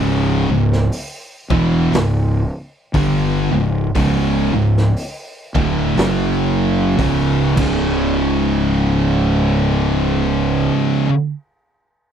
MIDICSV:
0, 0, Header, 1, 4, 480
1, 0, Start_track
1, 0, Tempo, 1011804
1, 1876, Time_signature, 4, 2, 24, 8
1, 5750, End_track
2, 0, Start_track
2, 0, Title_t, "Distorted electric guitar"
2, 0, Program_c, 0, 30
2, 0, Note_on_c, 0, 37, 101
2, 0, Note_on_c, 0, 44, 102
2, 0, Note_on_c, 0, 49, 105
2, 226, Note_off_c, 0, 37, 0
2, 229, Note_off_c, 0, 44, 0
2, 229, Note_off_c, 0, 49, 0
2, 236, Note_on_c, 0, 37, 64
2, 237, Note_on_c, 0, 44, 80
2, 397, Note_off_c, 0, 37, 0
2, 397, Note_off_c, 0, 44, 0
2, 713, Note_on_c, 0, 40, 95
2, 716, Note_on_c, 0, 47, 100
2, 716, Note_on_c, 0, 52, 113
2, 909, Note_off_c, 0, 40, 0
2, 910, Note_off_c, 0, 47, 0
2, 911, Note_off_c, 0, 52, 0
2, 916, Note_on_c, 0, 37, 68
2, 919, Note_on_c, 0, 44, 71
2, 1139, Note_off_c, 0, 37, 0
2, 1140, Note_off_c, 0, 44, 0
2, 1394, Note_on_c, 0, 43, 103
2, 1396, Note_on_c, 0, 50, 103
2, 1398, Note_on_c, 0, 55, 111
2, 1665, Note_off_c, 0, 43, 0
2, 1666, Note_off_c, 0, 50, 0
2, 1667, Note_off_c, 0, 55, 0
2, 1674, Note_on_c, 0, 37, 70
2, 1676, Note_on_c, 0, 44, 77
2, 1835, Note_off_c, 0, 37, 0
2, 1836, Note_off_c, 0, 44, 0
2, 1876, Note_on_c, 0, 37, 104
2, 1879, Note_on_c, 0, 44, 103
2, 1881, Note_on_c, 0, 49, 110
2, 2146, Note_off_c, 0, 37, 0
2, 2147, Note_off_c, 0, 44, 0
2, 2148, Note_off_c, 0, 49, 0
2, 2153, Note_on_c, 0, 37, 65
2, 2156, Note_on_c, 0, 44, 83
2, 2315, Note_off_c, 0, 37, 0
2, 2316, Note_off_c, 0, 44, 0
2, 2634, Note_on_c, 0, 38, 90
2, 2636, Note_on_c, 0, 45, 89
2, 2638, Note_on_c, 0, 50, 106
2, 2830, Note_off_c, 0, 38, 0
2, 2830, Note_off_c, 0, 45, 0
2, 2831, Note_off_c, 0, 50, 0
2, 2833, Note_on_c, 0, 42, 78
2, 2836, Note_on_c, 0, 49, 92
2, 2836, Note_on_c, 0, 54, 94
2, 3308, Note_off_c, 0, 42, 0
2, 3310, Note_off_c, 0, 49, 0
2, 3310, Note_off_c, 0, 54, 0
2, 3314, Note_on_c, 0, 37, 101
2, 3315, Note_on_c, 0, 44, 93
2, 3316, Note_on_c, 0, 49, 102
2, 3582, Note_off_c, 0, 37, 0
2, 3586, Note_off_c, 0, 44, 0
2, 3586, Note_off_c, 0, 49, 0
2, 3588, Note_on_c, 0, 37, 104
2, 3600, Note_on_c, 0, 44, 105
2, 3609, Note_on_c, 0, 49, 114
2, 5248, Note_off_c, 0, 37, 0
2, 5261, Note_off_c, 0, 44, 0
2, 5270, Note_off_c, 0, 49, 0
2, 5750, End_track
3, 0, Start_track
3, 0, Title_t, "Fingered electric bass"
3, 0, Program_c, 1, 33
3, 0, Note_on_c, 1, 25, 97
3, 215, Note_off_c, 1, 25, 0
3, 231, Note_on_c, 1, 25, 88
3, 420, Note_off_c, 1, 25, 0
3, 713, Note_on_c, 1, 28, 99
3, 901, Note_off_c, 1, 28, 0
3, 912, Note_on_c, 1, 25, 91
3, 1173, Note_off_c, 1, 25, 0
3, 1396, Note_on_c, 1, 31, 103
3, 1655, Note_off_c, 1, 31, 0
3, 1673, Note_on_c, 1, 25, 91
3, 1861, Note_off_c, 1, 25, 0
3, 1874, Note_on_c, 1, 25, 108
3, 2134, Note_off_c, 1, 25, 0
3, 2152, Note_on_c, 1, 25, 92
3, 2340, Note_off_c, 1, 25, 0
3, 2632, Note_on_c, 1, 26, 101
3, 2820, Note_off_c, 1, 26, 0
3, 2834, Note_on_c, 1, 30, 102
3, 3296, Note_off_c, 1, 30, 0
3, 3315, Note_on_c, 1, 25, 90
3, 3575, Note_off_c, 1, 25, 0
3, 3593, Note_on_c, 1, 25, 110
3, 5067, Note_off_c, 1, 25, 0
3, 5750, End_track
4, 0, Start_track
4, 0, Title_t, "Drums"
4, 344, Note_on_c, 9, 38, 36
4, 391, Note_off_c, 9, 38, 0
4, 436, Note_on_c, 9, 46, 68
4, 484, Note_off_c, 9, 46, 0
4, 714, Note_on_c, 9, 36, 107
4, 761, Note_off_c, 9, 36, 0
4, 916, Note_on_c, 9, 46, 63
4, 926, Note_on_c, 9, 38, 112
4, 963, Note_off_c, 9, 46, 0
4, 973, Note_off_c, 9, 38, 0
4, 1395, Note_on_c, 9, 36, 105
4, 1397, Note_on_c, 9, 46, 63
4, 1443, Note_off_c, 9, 36, 0
4, 1445, Note_off_c, 9, 46, 0
4, 1876, Note_on_c, 9, 36, 98
4, 1878, Note_on_c, 9, 46, 59
4, 1923, Note_off_c, 9, 36, 0
4, 1926, Note_off_c, 9, 46, 0
4, 2264, Note_on_c, 9, 38, 35
4, 2312, Note_off_c, 9, 38, 0
4, 2356, Note_on_c, 9, 46, 66
4, 2403, Note_off_c, 9, 46, 0
4, 2633, Note_on_c, 9, 36, 110
4, 2681, Note_off_c, 9, 36, 0
4, 2833, Note_on_c, 9, 46, 52
4, 2843, Note_on_c, 9, 38, 103
4, 2880, Note_off_c, 9, 46, 0
4, 2890, Note_off_c, 9, 38, 0
4, 3315, Note_on_c, 9, 36, 89
4, 3315, Note_on_c, 9, 46, 55
4, 3362, Note_off_c, 9, 36, 0
4, 3362, Note_off_c, 9, 46, 0
4, 3591, Note_on_c, 9, 49, 90
4, 3593, Note_on_c, 9, 36, 98
4, 3639, Note_off_c, 9, 49, 0
4, 3640, Note_off_c, 9, 36, 0
4, 5750, End_track
0, 0, End_of_file